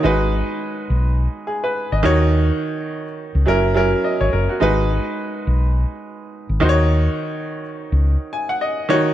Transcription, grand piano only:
0.03 G#3 D#4 F#4 B4
1.47 G#4
1.64 B4
1.92 D#5
2.03 D#3 D#4 F#4 C#5
3.46 F#3 C#4 E4 A#4
3.74 F#3 C#4 E4 A#4
4.04 D#5
4.21 C#5
4.33 A#4
4.49 F#4
4.60 G#3 D#4 F#4 B4
6.60 D#3 D#4 F#4 C5
6.69 C#5
8.33 G#5
8.49 F#5
8.61 D#5
8.89 D#3 D#4 F#4 C#5

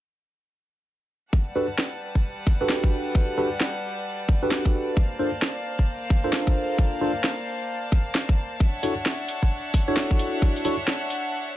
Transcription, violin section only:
1.33 G3 B4 D5 F#5 A5
4.97 A#3 C5 F5
8.60 D4 C#5 E5 F#5

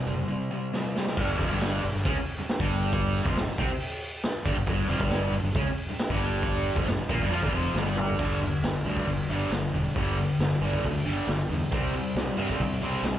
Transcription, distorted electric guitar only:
0.07 C3 G3
0.28 C3 G3
0.51 C3 G3
0.73 C3 G3
0.95 C3 G3
1.17 G2 G3
1.38 F2 F3
1.50 G2 G3
1.83 G2
1.94 G2
2.05 C#3 C#4
2.16 muted distorted electric guitar stroke
2.38 muted distorted electric guitar stroke
2.59 G2 G3
3.25 F2 F3
3.36 G2
3.48 muted distorted electric guitar stroke
3.58 C3 C4
4.45 G2 G3
4.56 G2
4.67 G2 G3
4.89 F2 F3
4.99 G2 G3
5.33 G2
5.44 G2
5.55 C#3 C#4
5.67 muted distorted electric guitar stroke
5.89 muted distorted electric guitar stroke
6.10 G2 G3
6.76 F2 F3
6.87 G2
6.98 muted distorted electric guitar stroke
7.09 A#2 A#3
7.21 G2 G3
7.32 F3 F4
7.42 G2 G3
7.53 F2 F3
7.76 G2 G3
8.19 G2 D3 G3
8.41 G2 D3
8.64 G2 D3
8.85 G2 D3 G3
9.08 G2 D3
9.29 G2 D3 G3
9.52 G2 D3
9.74 G2 D3
9.95 G2 D3 G3
10.18 G2 D3
10.39 G2 D3
10.61 G2 D3 G3
10.83 G2 D3
11.05 G2 D3 G3
11.28 G2 D3
11.49 G2 D3
11.71 C3 G3 C4
11.95 C3 G3
12.17 C3 G3
12.37 C3 G3 C4
12.61 C3 G3
12.82 C3 G3 C4
13.04 C3 G3

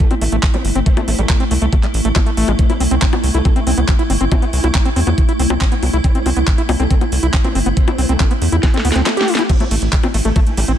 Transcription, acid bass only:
0.11 C4
0.21 A3
0.32 A3
0.43 A3
0.54 G3
0.75 C4
0.86 A3
0.97 A3
1.08 A3
1.19 G3
1.40 C4
1.51 A3
1.62 A3
1.73 A3
1.83 G3
2.05 A3
2.16 A3
2.27 A3
2.37 A3
2.48 G3
2.70 E4
2.80 C4
2.91 C4
3.02 C4
3.13 B3
3.34 E4
3.45 C4
3.56 C4
3.67 C4
3.78 B3
3.99 E4
4.10 C4
4.21 C4
4.32 C4
4.42 B3
4.64 E4
4.75 C4
4.85 C4
4.96 C4
5.07 B3
5.29 E4
5.39 C4
5.50 C4
5.61 C4
5.72 B3
5.93 E4
6.04 C4
6.15 C4
6.26 C4
6.37 B3
6.58 E4
6.69 C4
6.80 C4
6.91 C4
7.01 B3
7.23 E4
7.34 C4
7.45 C4
7.55 C4
7.66 B3
7.88 E4
7.98 C4
8.09 C4
8.20 C4
8.31 B3
8.52 E4
8.63 C4
8.74 C4
8.85 B3
8.96 C4
9.17 G4
9.28 E4
9.39 E4
9.49 A3
9.60 A3
9.71 A3
9.93 G3
10.03 C4
10.14 A3
10.25 A3
10.36 A3
10.57 G3
10.68 C4

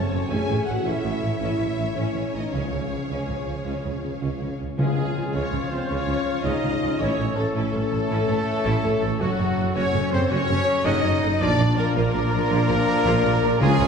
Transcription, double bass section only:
0.13 F#1
0.31 A1
0.49 A1
0.68 A1
0.86 A1
1.04 A1
1.23 A1
1.41 A1
1.60 A1
1.78 A1
1.97 A1
2.17 A1
2.35 A1
2.53 C#2
2.71 C#2
2.91 C#2
3.09 C#2
3.28 C#2
3.47 C#2
3.66 C#2
3.85 C#2
4.04 C#2
4.23 C#2
4.41 C#2
4.61 C#2
4.79 C#2
4.97 C#2
5.16 C#2
5.35 C#2
5.52 C#2
5.71 C#2
5.89 C#2
6.07 C#2
6.45 C#2
6.64 C#2
6.82 C#2
7.00 A1
7.19 A1
7.38 A1
7.55 A1
7.75 A1
7.92 A1
8.11 A1
8.28 A1
8.65 A1
8.84 A1
9.02 A1
9.20 F#1
9.38 F#1
9.57 F#1
9.75 F#1
9.93 F#1
10.12 F#1
10.30 F#1
10.49 F#1
10.85 F#1
11.04 F#1
11.23 F#1
11.40 A#1
11.59 A#1
11.77 A#1
11.96 A#1
12.15 A#1
12.33 A#1
12.51 A#1
12.69 A#1
13.05 A#1
13.24 A#1
13.41 A#1
13.60 C#2
13.79 C#2

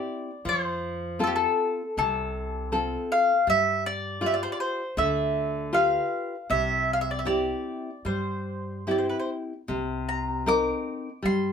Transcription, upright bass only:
0.45 F2
1.97 C2
3.47 G2
4.97 D2
6.50 C2
8.05 G2
9.69 C2
11.24 G2

